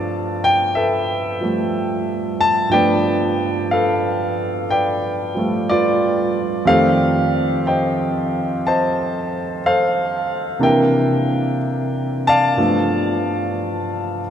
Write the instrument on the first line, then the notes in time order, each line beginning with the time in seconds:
grand piano
Already playing: G2 F3 A3 B3 D5 F5 A5
0.44 G5
0.75 A4 B4 E5
1.41 F3 G3 A3
2.41 A5
2.69 G2 F3 A3 D5 G5
2.74 B3 B4
3.71 A4 B4 F5
4.70 B4 D5 G5
5.35 F3 G3 A3
5.69 F4 B4 D5
6.65 F2 D#3 A3 G4 A4 F5
6.69 C5
7.67 C5 D#5 G5
8.67 C5 D#5 A5
9.66 A4 C5 F5
10.59 C3 E3 A#3 D4 G5
10.64 A#4 E5
12.27 D5 F5 A5
12.57 G2 F3 A3 B3